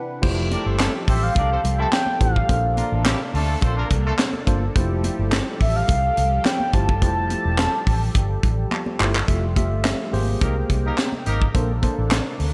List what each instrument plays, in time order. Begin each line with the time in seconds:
Already playing: analog synth pad C3 E3 D4 B4, tine electric piano F#5
0.22 fingered electric bass F1, analog synth pad F3 G3 G4 A4, tine electric piano A3 E4 F4 G4 C5, kick, crash, muted conga
0.51 horn section D4 G4 A#4 D5, closed hi-hat, muted conga
0.66 fingered electric bass G1, horn section C4 G4 A4 C5
0.79 horn section A3 C4 E4 A4, snare, clap, closed hi-hat, high conga
1.08 fingered electric bass A1, horn section C4 G4 A4 C5, soft synth lead E5, kick, open hi-hat
1.23 soft synth lead F5
1.35 fingered electric bass C2, horn section D4 G4 A#4 D5, kick, closed hi-hat, muted conga
1.50 horn section C4 G4 A4 C5
1.64 fingered electric bass C2, closed hi-hat, muted conga, low conga
1.79 horn section A3 C4 E4 A4, soft synth lead A5
1.92 soft synth lead G5, snare, clap, closed hi-hat, high conga
2.06 high conga
2.20 fingered electric bass A1, tine electric piano A3 E4 F4 G4 C5, soft synth lead F5, kick, closed hi-hat
2.36 kick
2.49 fingered electric bass A#1, analog synth pad C3 A#3 D4, tine electric piano A#3 D4 F4 A4 C5, kick, closed hi-hat, muted conga
2.77 horn section A#3 D4 F4 A#4, closed hi-hat, muted conga
2.92 fingered electric bass A1, horn section A3 D4 F4 A4
3.05 horn section G3 C4 E4 G4, snare, clap, closed hi-hat, high conga
3.34 fingered electric bass D2, horn section A3 D4 F4 A4, open hi-hat
3.61 fingered electric bass A#1, horn section C4 F4 A4 C5, kick, closed hi-hat, muted conga
3.77 horn section A#3 D4 F4 A#4
3.90 fingered electric bass C2, kick, closed hi-hat, muted conga, low conga
4.05 horn section A3 D4 F4 A4
4.19 snare, clap, closed hi-hat, high conga
4.33 high conga
4.47 fingered electric bass G1, tine electric piano A#3 D4 F4 A4 C5, kick, closed hi-hat
4.75 fingered electric bass F1, analog synth pad F3 G3 G4, tine electric piano A3 E4 F4 G4 C5, kick, closed hi-hat, muted conga
5.04 closed hi-hat, muted conga
5.19 fingered electric bass G1
5.32 snare, clap, closed hi-hat, high conga
5.61 fingered electric bass A1, soft synth lead E5, kick, open hi-hat
5.76 soft synth lead F5
5.88 fingered electric bass C2, kick, closed hi-hat, muted conga
6.17 fingered electric bass C2, closed hi-hat, low conga
6.45 soft synth lead G5, snare, clap, closed hi-hat, high conga
6.60 high conga
6.73 fingered electric bass G1, tine electric piano A3 E4 F4 G4 C5, soft synth lead A5, kick, closed hi-hat
6.89 kick
7.01 fingered electric bass F1, tine electric piano A3 E4 F4 G4 C5, kick, closed hi-hat, muted conga
7.30 closed hi-hat, muted conga
7.45 fingered electric bass E1
7.58 snare, clap, closed hi-hat, high conga
7.87 fingered electric bass A1, kick, open hi-hat
8.15 fingered electric bass G1, kick, closed hi-hat, muted conga
8.43 fingered electric bass A1, kick, closed hi-hat, low conga
8.71 clap, high conga
8.86 high conga
8.99 fingered electric bass G1, tine electric piano A3 E4 F4 G4 C5, clap
9.16 clap
9.28 fingered electric bass F1, analog synth pad F3 G3 A3 F4, tine electric piano A3 F4 G4 E5, kick, closed hi-hat, muted conga
9.56 tine electric piano A3 F4 G4 E5, kick, closed hi-hat, muted conga
9.72 fingered electric bass G1
9.85 snare, clap, closed hi-hat, high conga
10.12 fingered electric bass G#1, analog synth pad C3 G#3 A#3 G5, tine electric piano A#3 G4 G#4 C5, open hi-hat
10.41 fingered electric bass C2, horn section A#3 D#4 G4 A#4, kick, closed hi-hat, muted conga
10.70 fingered electric bass C2, kick, closed hi-hat, muted conga
10.85 horn section A#3 D#4 G4 A#4
10.98 snare, clap, closed hi-hat, high conga
11.13 high conga
11.26 fingered electric bass G#1, horn section A#3 D#4 G4 A#4, closed hi-hat
11.42 kick
11.54 fingered electric bass A#1, tine electric piano A#3 D4 A4 C5, analog synth pad A#3 D4 A4, kick, closed hi-hat, muted conga
11.82 tine electric piano A#3 D4 A4 C5, kick, closed hi-hat, muted conga
11.98 fingered electric bass A1
12.11 snare, clap, closed hi-hat, high conga
12.40 fingered electric bass D2, open hi-hat